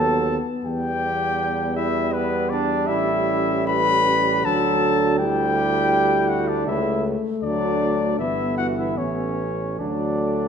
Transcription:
Already playing: bass trombone D#2, trombone F#3, french horn B3, flugelhorn A4, trumpet A5
0.65 bass trombone E2, trombone G3, flugelhorn G4, trumpet G5
1.77 flugelhorn E4, trumpet E5
2.13 flugelhorn B3, trumpet B4
2.50 flugelhorn D4, trumpet D5
2.87 bass trombone A1, french horn C#4, flugelhorn E4, trumpet E5
3.68 flugelhorn B4, trumpet B5
4.44 bass trombone D2, trombone F#3, french horn D4, flugelhorn A4, trumpet A5
5.19 trombone G3, french horn E4, flugelhorn G4, trumpet G5
6.29 flugelhorn F#4, trumpet F#5
6.48 flugelhorn D4, trumpet D5
6.67 bass trombone C#2, french horn A3, flugelhorn E4, trumpet E5
7.43 bass trombone D2, trombone F#3, flugelhorn D4, trumpet D5
8.19 bass trombone G1, trombone E3, french horn B3, flugelhorn E4, trumpet E5
8.58 flugelhorn F#4, trumpet F#5
8.78 flugelhorn E4, trumpet E5
8.97 bass trombone A1, flugelhorn C#4, trumpet C#5
9.79 bass trombone D2, trombone F#3, french horn A3, flugelhorn D4, trumpet D5

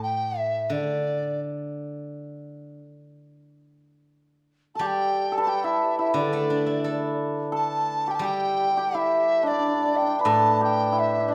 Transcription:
Already playing: guzheng A2
0.02 dizi G5
0.38 dizi E5
0.70 guzheng D3, dizi D5
4.75 hammered dulcimer A4, dizi A5
4.79 guzheng G3, hammered dulcimer G4
4.86 dizi G5
5.32 hammered dulcimer A4, dizi A5
5.38 hammered dulcimer A4 B4
5.42 dizi A5
5.47 hammered dulcimer G4, dizi G5
5.64 hammered dulcimer E4, dizi E5
5.99 hammered dulcimer E4, dizi E5
6.14 guzheng D3, hammered dulcimer D4, dizi D5
6.33 guzheng A3
6.50 guzheng D4
6.66 guzheng E4
6.84 guzheng A4
7.52 hammered dulcimer A4, dizi A5
8.08 hammered dulcimer G4, dizi G5
8.14 dizi A5
8.19 guzheng G3, hammered dulcimer G4
8.24 dizi G5
8.77 hammered dulcimer G4
8.94 hammered dulcimer E4, dizi E5
9.43 hammered dulcimer D4, dizi D5
9.51 hammered dulcimer D4
9.59 hammered dulcimer D4
9.67 hammered dulcimer D4
9.74 hammered dulcimer D4
9.81 hammered dulcimer D4
9.85 hammered dulcimer D4
9.95 hammered dulcimer D4, dizi G5
10.02 hammered dulcimer D4
10.07 hammered dulcimer D4
10.19 hammered dulcimer B4, dizi B5
10.25 guzheng A2, hammered dulcimer A4, dizi A5
10.61 hammered dulcimer G4, dizi G5
10.92 hammered dulcimer E4
10.99 dizi E5
11.20 hammered dulcimer E4
11.28 hammered dulcimer D4

